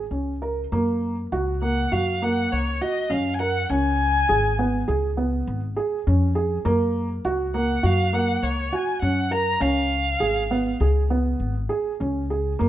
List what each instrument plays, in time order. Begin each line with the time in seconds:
0.11 upright bass C#2, felt piano C#4
0.42 felt piano A#4
0.72 upright bass F#2, felt piano A#3
1.32 upright bass C#2, felt piano F#4
1.62 felt piano A#3, violin F#5
1.92 upright bass F#2, felt piano F#4, violin F5
2.22 felt piano A#3, violin F#5
2.53 upright bass C#2, violin C#5
2.81 felt piano F#4, violin D#5
3.10 upright bass F#2, felt piano C#4, violin F5
3.34 violin G#5
3.39 felt piano A#4, violin F#5
3.69 upright bass C#2, felt piano C#4, violin G#5
4.29 upright bass G#1, felt piano G#4
4.59 felt piano B3
4.88 upright bass C#2, felt piano G#4
5.17 felt piano B3
5.47 upright bass G#1
5.76 felt piano G#4
6.07 upright bass F2, felt piano C#4
6.35 felt piano G#4
6.65 upright bass F#2, felt piano A#3
7.25 upright bass C#2, felt piano F#4
7.54 felt piano A#3, violin F#5
7.83 upright bass F#2, felt piano F#4, violin F5
8.13 felt piano A#3, violin F#5
8.43 upright bass C#2, violin C#5
8.72 felt piano F#4, violin G#5
9.02 upright bass F#2, felt piano C#4, violin F#5
9.31 felt piano A#4, violin A#5
9.60 upright bass C#2, felt piano C#4, violin F5
10.20 upright bass G#1, felt piano G#4
10.51 felt piano B3
10.80 upright bass C#2, felt piano G#4
11.10 felt piano B3
11.40 upright bass G#1
11.69 felt piano G#4
12.00 upright bass C#2, felt piano C#4
12.30 felt piano G#4
12.59 upright bass F#2, felt piano A#3